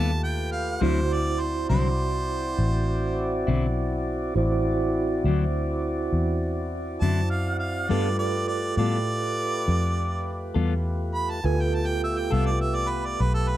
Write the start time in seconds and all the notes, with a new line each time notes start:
Already playing: D#2 G3 A3 B3 F4 G4 A4 B4 A5
0.24 G5
0.52 F5
0.81 D2 D3 F#3 C4 E4 F#4 C5 D5
1.13 D5
1.40 C5
1.69 C2 D3 F#3 C4 E4 C5
2.58 A1
3.47 B1 D3 F#3 C4 E4
4.35 A1 C4 E4 F#4 C5 D5
5.24 D2 D3 F#3 C4 E4
6.13 E2
7.01 F#2 D3 F#3 C4 E4 A5
7.30 F5
7.59 F5
7.89 G2 G3 A3 B3 F4 G4 A4 B4 D5
8.19 D5
8.48 D5
8.77 A2 G3 B3 F4 A4 D5
9.68 F2
10.54 E2 G3 B3 F4 A4
11.15 B5
11.31 A5
11.43 D2 A3 B3 F4 G4 A4 B4 G#5
11.61 G5
11.75 A5
11.87 G5
12.04 E5
12.18 G5
12.31 C2 G3 B3 F4 A4 E5
12.46 D5
12.61 E5
12.75 D5
12.90 B4
13.06 D5
13.20 B1 B4
13.34 A4
13.48 B4